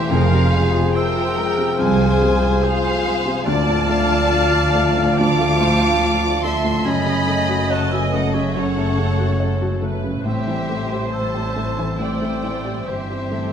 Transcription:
Already playing: A2 E3 G3 A3 C4 G4 C5 E5
0.10 F1 F2 F3 G#4 A#4 C5 F5
0.32 C3 F4
0.53 G#3 C4 G#4
0.74 F4 G#4
0.95 F4 A#4 C5 E5 G5
1.16 C4 F4
1.38 G#3 A#4
1.58 C3 C4
1.77 C2 F2 G#3 G#4 C5 F5 G#5
2.00 G#3 F4
2.21 C3 C4
2.42 F4 G#4
2.63 F4 G#4 C5 F5
2.84 C4 F4
3.04 G#3
3.25 C3 C4
3.46 D2 D3 F3 F4 D5 F5 A5
3.67 A2 F4
3.89 A3 D4 F5
4.10 F4 A4
4.31 F4 F5
4.53 D4 F4
4.75 A3
4.97 A2 D4
5.18 D2 A3 D5 F5 A5 D6
5.40 A3 F4
5.60 A2 D4 C5
5.81 F4 A4
6.02 F4 D5 F5
6.23 D4 F4
6.43 A3 E5 A5 C6
6.65 A2 D4
6.85 F#1 F#2 A3 C#4 D#5 G#5 B5
7.06 C#3 C#4
7.27 A3
7.49 F#4
7.70 C#4 C#5 F#5 A5
7.92 A3 F#4 B4 E5 G#5
8.13 C#3 A3 A4 D#5 F#5
8.33 C#3 A3 G#4 C#5 E5
8.54 F#2 C#3 A4 C#5 F#5
8.77 A3 C#4
8.97 C#3 A3
9.18 F#4
9.40 C#4 A4 C#5
9.61 A3 F#4
9.82 C#3 A3 B4
10.03 C#3 A3
10.24 A1 A2 G3 C4 G4 C5 E5
10.47 E3 C4
10.69 A3
10.91 G4
11.13 G3 C4 C5 E5 A5
11.34 A3 G4
11.56 E3 A3
11.78 E3 A3
11.99 A2 E3 G3 C4 C5 D5 E5 G5
12.21 A3 C4
12.43 E3 A3
12.65 G4
12.86 G1 G2 G3 C4 G4 C5 E5
13.09 A3 G4
13.31 E3 A3 A4

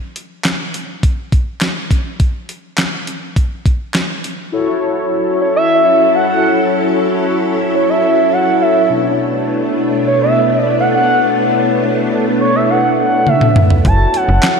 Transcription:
0.16 closed hi-hat
0.45 snare, clap, closed hi-hat
0.74 closed hi-hat
1.03 kick, closed hi-hat
1.32 kick, closed hi-hat
1.61 snare, clap, closed hi-hat
1.91 kick, closed hi-hat
2.20 kick, closed hi-hat
2.49 closed hi-hat
2.78 snare, clap, closed hi-hat
3.07 closed hi-hat
3.36 kick, closed hi-hat
3.66 kick, closed hi-hat
3.94 snare, clap, closed hi-hat
4.24 closed hi-hat
4.52 F#3 C#4 E4 F#4 A4 C#5
5.42 C#5
5.56 E5
6.15 F#5
6.29 F#5
7.75 C#5
7.90 E5
8.33 F#5
8.62 E5
8.89 B2 A3 B3 D4 E4 A4 C#5
10.07 C#5
10.22 E5
10.64 D5
10.80 F#5
10.95 F#5
12.41 C#5
12.55 E5
12.70 F#5
13.00 F#5
13.27 E5, high tom
13.41 mid tom
13.56 mid tom
13.70 floor tom
13.84 F#1 F#3 C#4 E4 F#4 A4 C#5 A5, kick, closed hi-hat
14.14 F#5, closed hi-hat
14.29 F#1
14.43 snare, clap, closed hi-hat

